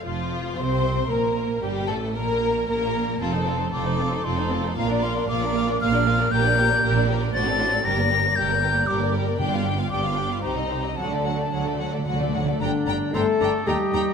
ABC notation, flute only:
X:1
M:3/4
L:1/8
Q:1/4=115
K:Bb
V:1 name="Flute"
f2 c'2 b2 | g a b2 b2 | a2 d'2 c'2 | b c' d'2 f'2 |
[K:Gm] g'3 z a'2 | b'2 g'2 d' z | g2 d'2 b2 | a4 z2 |
d2 a2 g2 |]